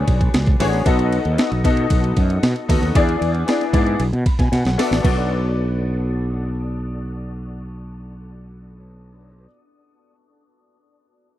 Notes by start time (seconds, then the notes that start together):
Already playing: B3 D4 F#4 G#4 C5 C#5
0.08 B1, kick, ride
0.21 kick, ride
0.34 C#2, snare, ride
0.46 kick, ride
0.60 A1 B3 D4 F#4 G#4 C#5, open hi-hat, ride
0.73 snare, ride
0.85 B1 B3 D#4 F#4 A4 D#5, kick, ride
0.99 ride
1.12 ride
1.25 D#2, ride
1.38 B3 D#4 F#4 A4 D#5, snare, ride
1.52 B1, snare, ride
1.64 B2 B3 D#4 F#4 A4 D#5, kick, snare, ride
1.77 ride
1.90 B1, kick, ride
2.04 ride
2.17 F#2, kick, ride
2.30 ride
2.43 B2, snare, ride
2.56 ride
2.68 D#2 B3 D#4 F#4 A4 D#5, kick, open hi-hat, ride
2.82 D#2, snare, ride
2.95 E2 B3 D4 E4 G#4 D5, kick, ride
3.09 ride
3.21 E2, ride
3.35 ride
3.47 B3 D4 E4 G#4 D5, snare, ride
3.61 snare, ride
3.73 G#2 B3 D4 E4 G#4 D5, kick, ride
3.86 ride
4.00 B1, ride
4.13 B2, ride
4.26 B5, kick, ride
4.39 B2 G#5, kick, snare, ride
4.52 B2 F#5, snare, ride
4.65 B1, snare, ride
4.77 B3 D4 F#4 A4 D5 E5, snare, open hi-hat, ride
4.91 A1, snare, ride
5.02 B1 B3 D4 F#4 A4, kick, crash
5.07 D5